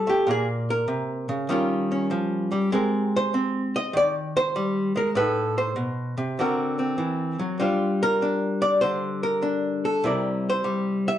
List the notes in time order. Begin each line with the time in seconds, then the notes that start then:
Already playing: C3 F3 D4 A4
0.07 A3 G4
0.27 A#2 A#3 G#4
0.70 A#4
0.88 C3
1.29 C#3
1.49 D#3 G3 C#4 F4 A#4
1.92 C#4
2.11 F3
2.52 G3
2.72 G#3 C4 G4 A#4
3.16 C5
3.34 C4
3.76 D#5
3.93 D#3 D5
4.37 C5
4.56 G3
4.96 G#3 A#4
5.15 A2 D#4 A4 B4
5.58 C5
5.76 B2
6.18 C3
6.39 D3 C4 F#4 A#4
6.79 C4
6.98 E3
7.39 F#3
7.60 G3 D4 F4 C5
8.03 A#4
8.22 D4
8.62 D5
8.81 D3 C5
9.23 A#4
9.42 D4
9.85 A4
10.04 C3 G3 E4 A#4 D5
10.49 C5
10.64 G3
11.08 E5